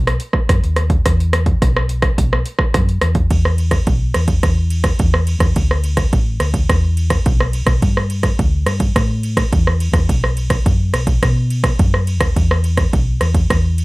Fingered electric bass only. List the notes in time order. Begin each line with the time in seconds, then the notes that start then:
Already playing: B1
0.49 F#2
0.64 D#2
1.05 E2
1.62 B1
2.18 B1
2.74 F#2
3.02 E2
3.30 E2
3.87 B1
4.15 E2
4.43 E2
5.00 E2
5.39 E2
5.56 D2
6.13 A1
6.40 D2
6.69 E2
7.26 B1
7.65 B1
7.82 G2
8.39 D2
8.66 G2
8.96 A2
9.53 E2
9.92 E2
10.09 B1
10.66 F#2
10.93 B1
11.22 B2
11.79 F#2
12.19 D#2
12.36 E2
12.93 B1
13.21 E2
13.50 E2